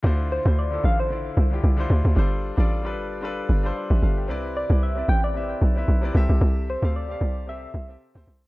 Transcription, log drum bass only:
X:1
M:4/4
L:1/16
Q:"Swing 16ths" 1/4=113
K:Ddor
V:1 name="Log drum bass" clef=bass
D,,3 D,,3 A,,,4 C,,2 C,,2 D,, D,, | G,,,3 A,,,3 G,,,4 G,,,2 z A,,, G,,,2 | C,,3 C,,3 A,,,4 B,,,2 B,,,2 C,, C,, | C,,3 D,,3 C,,4 C,,2 z D,, C,,2 |]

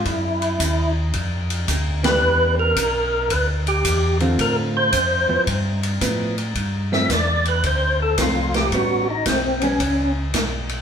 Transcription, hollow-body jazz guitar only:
X:1
M:4/4
L:1/8
Q:"Swing" 1/4=111
K:Ddor
V:1 name="Hollow-body jazz guitar"
z6 z [E,B,DG]- | [E,B,DG]2 z4 z [D,CFA]- | [D,CFA]2 z [F,B,E] z2 [F,B,E] z | [K:Gmix] z [F,A,C] z4 [F,A,C]2 |
[G,B,^C] z2 [G,B,C] z4 |]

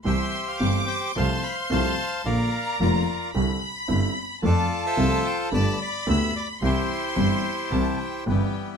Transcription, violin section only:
X:1
M:4/4
L:1/8
Q:1/4=110
K:C
V:1 name="Violin section"
c'2 d'2 c'4 | _b4 =b4 | a4 b4 | c'4 a g g2 |]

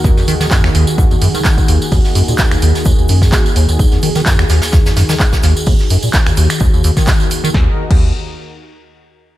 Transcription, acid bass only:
X:1
M:4/4
L:1/16
Q:"Swing 16ths" 1/4=128
K:Ebm
V:1 name="Acid bass" clef=bass
E,, _F,, E, E, G,, E,, E,, z E,, F,, G,, E, z2 E,, z | E,, z G,, B,, E,, E,, E,, z E,, E,, G,,2 E,, z E,, E,, | E,, _F,, E, E, G,, E,, E,, z E,, F,, G,, E, z2 E,, z | E,, z G,, B,, E,, E,, E,, z E,, E,, E,, E, E,, z2 E, |
E,, z2 E,,2 z8 z3 |]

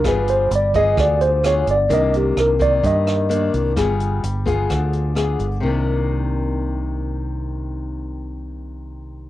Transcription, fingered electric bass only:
X:1
M:4/4
L:1/8
Q:1/4=129
K:Cm
V:1 name="Fingered electric bass" clef=bass
G,,,2 G,,,2 D,,3 G,,, | C,,2 C,,2 G,,3 C,, | G,,,2 G,,,2 D,,3 G,,, | C,,8- |
C,,8 |]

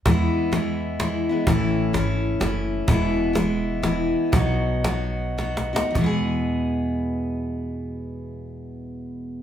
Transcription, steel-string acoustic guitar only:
X:1
M:3/4
L:1/8
Q:"Swing" 1/4=119
K:E
V:1 name="Steel-string acoustic guitar"
[E,G,B,E]2 [E,G,B,E]2 [E,G,B,E] [G,B,E] | [A,,E,A,CE]2 [E,A,CE]2 [E,A,CE]2 | [E,,B,,E,G,B,E]2 [E,G,B,E]2 [E,G,B,E]2 | [B,,F,B,DF]2 [F,B,DF]2 [F,B,DF] [B,DF] |
[E,,B,,E,G,B,G]6- | [E,,B,,E,G,B,G]6 |]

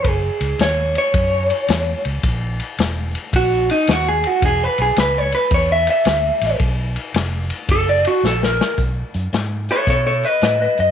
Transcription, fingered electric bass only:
X:1
M:4/4
L:1/8
Q:"Swing" 1/4=110
K:F#dor
V:1 name="Fingered electric bass" clef=bass
F,,, C,, D,,2 F,,2 E,, C,, | ^A,,,2 E,,,2 A,,,2 D,,2 | E,,, B,,, C,,2 E,,2 =D,, A,,, | B,,,2 ^E,,,2 F,,,2 ^A,,,2 |
B,,, F,, G,,2 B,,2 A,, F,, |]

